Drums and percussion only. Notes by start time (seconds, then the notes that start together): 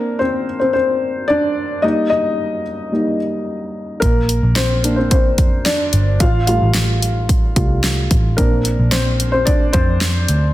4.02 kick, closed hi-hat
4.29 closed hi-hat
4.56 snare, closed hi-hat
4.84 closed hi-hat
5.11 kick, closed hi-hat
5.38 kick, closed hi-hat
5.66 snare, closed hi-hat
5.93 closed hi-hat
6.20 kick, closed hi-hat
6.47 closed hi-hat
6.74 snare, closed hi-hat
7.02 closed hi-hat
7.29 kick, closed hi-hat
7.56 kick, closed hi-hat
7.84 snare, closed hi-hat
8.11 kick, closed hi-hat
8.38 kick, closed hi-hat
8.65 closed hi-hat
8.92 snare, closed hi-hat
9.20 closed hi-hat
9.47 kick, closed hi-hat
9.73 kick, closed hi-hat
10.01 snare, closed hi-hat
10.28 closed hi-hat